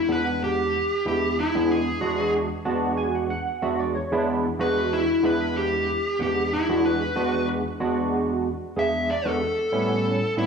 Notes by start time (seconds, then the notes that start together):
0.08 E2 G#3 B3 D4 B4 F#5
0.44 G4
1.06 E2 G#3 B3 D4 E4 G4
1.40 E4
1.55 E2 G#3 B3 D4 G#4
1.71 G#4
2.01 E2 G#3 B3 D4 F#4
2.65 E2 G#3 B3 D4 F#4 A5
2.97 G#5
3.15 F#5
3.30 F#5
3.62 E2 G#3 B3 D4 F#4 E5
3.79 D5
3.95 C#5
4.12 E2 G#3 B3 D4 E4
4.59 E2 G#3 B3 D4 F#4 B4
4.93 E4
5.23 E2 G#3 B3 D4 E4 B4
5.57 G4
6.19 E2 G#3 B3 D4 G4 F#5
6.53 E4
6.69 E2 G#3 B3 D4 F#4
6.86 B4
7.16 E2 G#3 B3 D4 F#4
7.80 E2 G#3 B3 D4 F#4
8.76 E2 G#3 B3 D4 G#4 E5
9.11 D5
9.25 E2 G#3 B3 D4 F#4 A4
9.72 A2 G3 B3 C#4 E4
10.37 A2 G3 B3 C#4 E4